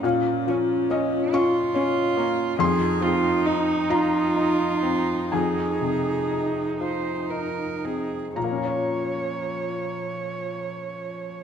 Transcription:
<<
  \new Staff \with { instrumentName = "Cello" } { \time 6/8 \key bes \minor \tempo 4. = 40 des'4. f'4. | aes'8 f'8 ees'8 f'4. | aes'4. c''8 bes'8 aes'8 | f2. | }
  \new Staff \with { instrumentName = "Felt piano" } { \time 6/8 \key bes \minor << { f''4 ees''8 des'''4. | c'''4. bes''4. | aes''2~ aes''8 r8 | <bes, bes des' f' des'' bes''>2. | } \\ { <bes, bes>8 f8 des'8 f'8 des'8 bes8 | f,8 c'8 ees'8 f'8 ees'8 c'8 | f,8 c8 ees'8 f'8 ees'8 c'8 | r2. | } >> }
  \new Staff \with { instrumentName = "Viola" } { \time 6/8 \key bes \minor des'8 des'8 des'8 des'8 des'8 des'8 | ees'2. | ees'2~ ees'8. r16 | des''2. | }
>>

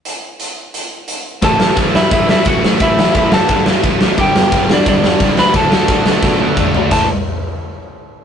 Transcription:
<<
  \new Staff \with { instrumentName = "Lead electric guitar" } { \time 4/4 \key d \major \tempo 4 = 175 r1 | <a' a''>4 r8 <e' e''>8 <e' e''>8 <e' e''>8 <fis' fis''>4 | <e' e''>4 <e' e''>8 <a' a''>4 r4. | <g' g''>4. <d' d''>8 <d' d''>4. <b' b''>8 |
<a' a''>2. r4 | a''8 r2. r8 | }
  \new Staff \with { instrumentName = "Distorted electric guitar" } { \clef bass \time 4/4 \key d \major r1 | r1 | r1 | <g, d g>8 <g, d g>8 <g, d g>8 <g, d g>8 <g, d g>8 <g, d g>8 <g, d g>8 <d a d'>8 |
<d a d'>8 <d a d'>8 <d a d'>8 <d a d'>8 <d a d'>8 <d a d'>8 <d a d'>8 <d a d'>8 | <a, e a>8 r2. r8 | }
  \new Staff \with { instrumentName = "Distorted electric guitar" } { \clef bass \time 4/4 \key d \major r1 | <a, e a>8 <a, e a>8 <a, e a>8 <a, e a>8 <a, e a>8 <a, e a>8 <a, e a>8 <a, e a>8 | <a, e a>8 <a, e a>8 <a, e a>8 <a, e a>8 <a, e a>8 <a, e a>8 <a, e a>8 <a, e a>8 | <g, d g>8 <g, d g>8 <g, d g>8 <g, d g>8 <g, d g>8 <g, d g>8 <g, d g>8 <d a d'>8 |
<d a d'>8 <d a d'>8 <d a d'>8 <d a d'>8 <d a d'>8 <d a d'>8 <d a d'>8 <d a d'>8 | <a, e a>8 r2. r8 | }
  \new Staff \with { instrumentName = "Overdriven electric guitar" } { \clef bass \time 4/4 \key d \major r1 | <a, e a>8 <a, e a>8 <a, e a>8 <a, e a>8 <a, e a>8 <a, e a>8 <a, e a>8 <a, e a>8 | <a, e a>8 <a, e a>8 <a, e a>8 <a, e a>8 <a, e a>8 <a, e a>8 <a, e a>8 <a, e a>8 | <g, d g>8 <g, d g>8 <g, d g>8 <g, d g>8 <g, d g>8 <g, d g>8 <g, d g>8 <d a d'>8 |
<d a d'>8 <d a d'>8 <d a d'>8 <d a d'>8 <d a d'>8 <d a d'>8 <d a d'>8 <d a d'>8 | <a, e a>8 r2. r8 | }
  \new Staff \with { instrumentName = "Picked electric bass" } { \clef bass \time 4/4 \key d \major r1 | a,,8 a,,8 a,,8 g,8 g,8 g,8 e,,8 a,,8 | a,,8 a,,8 a,,8 g,8 g,8 g,8 e,,8 a,,8 | g,,8 g,,8 g,,8 e,8 e,8 e,8 cis,8 d,8 |
d,8 d,8 d,8 b,8 b,8 b,8 a,,8 d,8 | a,,8 r2. r8 | }
  \new DrumStaff \with { instrumentName = "Drums" } \drummode { \time 4/4 hh4 hh4 hh4 hh4 | <bd cymr>8 sn8 <bd cymr>8 sn8 <bd cymr>8 sn8 <bd cymr>8 sn8 | <bd cymr>8 sn8 <bd cymr>8 sn8 <bd cymr>8 sn8 <bd cymr>8 sn8 | <bd cymr>8 sn8 <bd cymr>8 sn8 <bd cymr>8 sn8 <bd cymr>8 sn8 |
<bd cymr>8 sn8 <bd cymr>8 sn8 <bd sn>8 tommh8 <bd toml>8 tomfh8 | <cymc bd>4 r4 r4 r4 | }
>>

